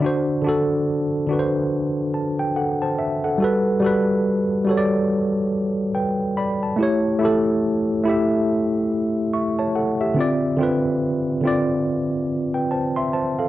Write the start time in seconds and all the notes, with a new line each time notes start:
Already playing: D5
0.00 D3 D4
0.04 F#4 C5
0.42 D3 D4
0.46 F#4 A4
1.27 D3 D4
1.31 F#4 B4
1.39 C5
2.14 A5
2.39 G5
2.56 A4 F#5
2.82 C5 A5
2.99 E5
3.24 A4 F#5
3.38 G3 F#4
3.42 A4 B4
3.80 G3 F#4
3.84 A4 B4
4.65 G3 F#4
4.69 A4 C#5
4.77 D5
5.95 B4 G5
6.37 D5 B5
6.63 A5
6.76 A3 E4
6.80 G4 C#5
7.19 A3 E4
7.23 G4 A4
8.03 A3 E4
8.07 G4 E5
9.34 E5 C#6
9.59 C#5 A5
9.76 A4 F#5
10.01 G4 E5
10.14 D3 C4
10.19 F4 D5
10.57 D3 C4
10.61 F4 B4
11.41 D3 C4
11.45 F4 D5
12.54 B4 G5
12.71 C5 A5
12.96 E5 C6
13.13 C5 A5
13.39 A4 F5